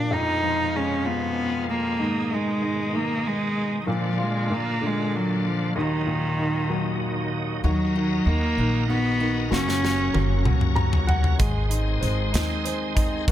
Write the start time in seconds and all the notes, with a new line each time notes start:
Already playing: A#2 F3 D4
0.11 F2 B2 F3 G#3 D#4 F4
0.43 F3
0.75 G#3 C#4
1.05 F3 B3
1.70 A#3
1.99 G#2 D#3 D#4
2.31 D#3 G#3
2.62 G#2
2.93 D#3 A#3
3.27 G#3
3.84 A#2 F#3
3.88 A#2 D3 F3 D4 F4
4.18 G#3 F4
4.50 A#2 A#3
4.81 D3
4.86 G#3
5.16 F#3
5.47 F3
5.75 D#2 D#3 F#3 D#4
6.06 A#2
6.37 D#3
6.70 F#3
7.64 D#2 D#3 F#3 F#4 A#4 D#5 A#5
7.95 D#3 D#4
8.26 D#2 D#3 A#3
8.57 A#1 D#3 D#4
8.89 D#3 B3 F#4
9.20 D#3 D#4
9.51 F#1 F#3 A#3 C#4 F#4 C#5, snare
9.69 snare
9.82 F#3 C#4, snare
10.14 F#1 F#3 A#3, high tom
10.45 C#2 F#3 C#4, mid tom
10.61 mid tom
10.75 F#3 F#4 A#5, mid tom
10.93 floor tom
11.07 F#3 C#4 F#5, floor tom
11.24 floor tom
11.38 G#1 D#3 G#3 G#4 C5 D#5 C6, kick, closed hi-hat
11.69 C4 D#4, closed hi-hat
12.01 G#1 G#3 C5, closed hi-hat
12.33 D#2 C4 D#4, snare, closed hi-hat
12.65 G#4 C5, closed hi-hat
12.95 C4 D#4, kick, closed hi-hat
13.28 A#1 F#3 A#3, kick, closed hi-hat